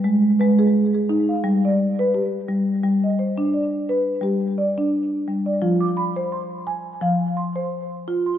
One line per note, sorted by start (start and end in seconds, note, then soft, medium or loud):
0.04 0.39 G#3 medium
0.39 1.31 G#3 medium
0.39 0.93 B4 medium
0.59 0.93 G#4 medium
0.94 1.44 G#4 medium
1.09 1.44 D#4 medium
1.29 1.63 F5 medium
1.44 2.47 G3 medium
1.65 2.14 D5 medium
1.99 2.33 B4 medium
2.14 2.68 G4 medium
2.49 2.82 G3 medium
2.83 4.05 G3 medium
3.04 3.54 D#5 soft
3.19 3.73 C5 soft
3.38 3.72 D4 medium
3.54 4.07 D5 soft
3.89 4.23 B4 medium
4.21 5.27 G3 medium
4.21 4.58 G4 medium
4.58 5.12 D5 medium
4.78 5.12 D4 medium
5.28 5.63 G3 medium
5.46 5.81 D5 medium
5.62 6.84 F3 medium
5.62 5.97 F4 medium
5.80 6.32 D6 medium
5.97 6.51 B5 medium
6.16 6.52 C5 medium
6.32 6.87 C6 soft
6.67 7.02 G#5 medium
7.01 8.24 F3 medium
7.01 7.38 F5 medium
7.37 7.92 C6 medium
7.56 7.91 C5 medium
8.08 8.38 F4 medium
8.26 8.38 C6 soft